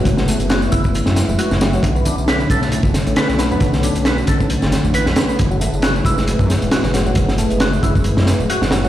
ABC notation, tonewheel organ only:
X:1
M:4/4
L:1/16
Q:"Swing 16ths" 1/4=135
K:F#m
V:1 name="Tonewheel organ"
F, F, A, z F z E z4 z F z F, F, | z B, D z B z A z4 z B z B, B,- | B, B, D z B z A z4 z B z B, B, | z F, A, z F z E z4 z F z F, F,- |
F, F, A, z F z E z4 z F z F, F, |]